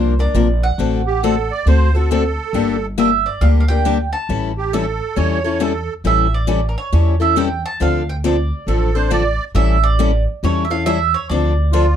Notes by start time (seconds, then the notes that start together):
Already playing: C2 C3 F3 A#3 D4 A#4 C5
0.19 A#3 D4 A#4 D5
0.34 A#1 C3 F3 A#3 D4 A#4
0.63 F#5
0.78 A1 D3 A3 C4 F#4 A4
1.07 G4
1.23 D3 A3 C4 F#4 A4
1.51 D5
1.66 D2 D3 A3 C4 F#4 A4 C5
1.95 C4 F#4 A4
2.11 D3 A3 C4 F#4 A4
2.53 G1 D3 G3 A#3 D4 G4
2.98 D3 G3 A#3 D4 G4 E5
3.26 D5
3.41 D2 D3 G3 A#3 D4 G4 F5
3.60 F5
3.68 A#3 D4 G4 G5
3.85 D3 G3 A#3 D4 G4
4.13 A5
4.29 A1 E3 G3 C#4 E4 A4
4.58 G4
4.73 E3 G3 C#4 E4 A4
5.16 E2 E3 G3 C#4 E4 A4 C#5
5.44 C#4 E4 A4
5.60 E3 G3 C#4 E4 A4
6.04 A1 E3 G3 C#4 E4 A4 E5
6.34 D5
6.47 E3 G3 C#4 E4 A4
6.69 A#4
6.78 C#5
6.93 E2 E3 G3 C#4 E4 A4
7.20 C#4 E4 A4 E5
7.36 E3 G3 C#4 E4 A4 G5
7.66 A5
7.80 D2 D3 F3 C4 D4 A4 F5
8.09 G5
8.24 D3 F3 C4 D4 A4 D5
8.67 A1 D3 F3 C4 D4 A4
8.94 C4 D4 A4 C5
9.11 D3 F3 C4 D4 A4 D5
9.55 A1 E3 G3 C#4 E4 A4 E5
9.84 D5
9.99 E3 G3 C#4 E4 A4
10.43 E2 E3 G3 C#4 E4 A4 C#5
10.65 E5
10.70 C#4 E4 A4 F5
10.86 E3 G3 C#4 E4 A4 E5
11.14 C#5
11.29 D2 D3 F3 C4 D4 A4 D5
11.72 D3 F3 C4 D4 F4 A4